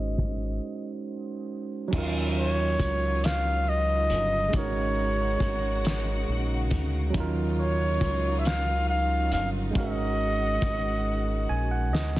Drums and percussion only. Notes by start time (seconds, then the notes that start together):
0.18 kick, closed hi-hat
1.93 kick, crash
2.80 kick, closed hi-hat
3.24 snare, closed hi-hat
4.10 closed hi-hat
4.53 kick, closed hi-hat
5.40 kick, closed hi-hat
5.85 snare, closed hi-hat
6.71 kick, closed hi-hat
7.14 kick, closed hi-hat
8.01 kick, closed hi-hat
8.45 snare, closed hi-hat
9.32 closed hi-hat
9.75 kick, closed hi-hat
10.62 kick, closed hi-hat
11.95 snare
12.16 snare